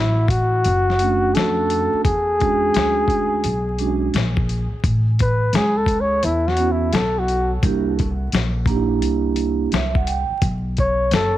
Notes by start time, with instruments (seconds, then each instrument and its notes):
Already playing: upright bass A1, flugelhorn E4
0.28 flugelhorn F#4, kick, closed hi-hat
0.65 upright bass F#1, closed hi-hat
0.90 snare
0.99 vibraphone A3 C#4 D4 F#4, closed hi-hat
1.35 upright bass F2, flugelhorn A4, snare, closed hi-hat
1.70 closed hi-hat
1.93 muted upright bass stroke
2.04 upright bass E2, flugelhorn G#4, kick, closed hi-hat
2.38 vibraphone G#3 C#4 D4 F#4, kick, closed hi-hat
2.74 upright bass D2, snare, closed hi-hat
3.08 kick, closed hi-hat
3.44 upright bass B1, closed hi-hat
3.78 vibraphone G#3 C#4 D4 F#4, closed hi-hat
4.14 upright bass A#1, snare, closed hi-hat
4.37 kick
4.49 closed hi-hat
4.72 muted upright bass stroke
4.84 upright bass A1, kick, closed hi-hat
5.19 flugelhorn B4, kick, closed hi-hat
5.53 upright bass C#2, flugelhorn G#4, snare, closed hi-hat
5.77 flugelhorn A4
5.86 kick, closed hi-hat
6.01 flugelhorn C#5
6.23 upright bass E2, flugelhorn E4, closed hi-hat
6.48 flugelhorn F#4, snare
6.57 vibraphone B3 C#4 E4 F#4, closed hi-hat
6.71 flugelhorn E4
6.93 upright bass B1, flugelhorn A4, snare, closed hi-hat
7.19 flugelhorn F#4
7.28 closed hi-hat
7.63 upright bass C2, vibraphone A#3 D4 E4 G4, kick, closed hi-hat
7.99 kick, closed hi-hat
8.32 upright bass A#1, snare, closed hi-hat
8.66 vibraphone A#3 D4 D#4 G4, kick, closed hi-hat
8.75 vibraphone E4
9.02 upright bass C2, closed hi-hat
9.36 closed hi-hat
9.72 upright bass C2, vibraphone E5, snare, closed hi-hat
9.95 vibraphone F#5, kick
10.07 vibraphone G5, closed hi-hat
10.30 muted upright bass stroke
10.42 upright bass B1, kick, closed hi-hat
10.77 flugelhorn C#5, kick, closed hi-hat
11.11 upright bass F#1, flugelhorn A4, snare, closed hi-hat